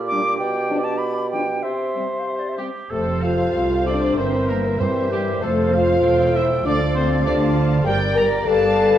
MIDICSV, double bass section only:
0, 0, Header, 1, 2, 480
1, 0, Start_track
1, 0, Key_signature, -1, "major"
1, 0, Tempo, 610998
1, 304, Time_signature, 2, 2, 24, 8
1, 787, Tempo, 636943
1, 2707, Tempo, 624350
1, 4627, Tempo, 607287
1, 6947, End_track
2, 0, Start_track
2, 0, Title_t, "Double bass section"
2, 0, Program_c, 0, 48
2, 2225, Note_on_c, 0, 29, 41
2, 2677, Note_off_c, 0, 29, 0
2, 2706, Note_on_c, 0, 36, 38
2, 3177, Note_off_c, 0, 36, 0
2, 3190, Note_on_c, 0, 31, 44
2, 3654, Note_off_c, 0, 31, 0
2, 3663, Note_on_c, 0, 43, 45
2, 4145, Note_off_c, 0, 43, 0
2, 4150, Note_on_c, 0, 29, 45
2, 4619, Note_off_c, 0, 29, 0
2, 4624, Note_on_c, 0, 28, 42
2, 5098, Note_off_c, 0, 28, 0
2, 5105, Note_on_c, 0, 38, 49
2, 5575, Note_off_c, 0, 38, 0
2, 5585, Note_on_c, 0, 38, 52
2, 6063, Note_on_c, 0, 31, 57
2, 6064, Note_off_c, 0, 38, 0
2, 6534, Note_off_c, 0, 31, 0
2, 6545, Note_on_c, 0, 31, 56
2, 6947, Note_off_c, 0, 31, 0
2, 6947, End_track
0, 0, End_of_file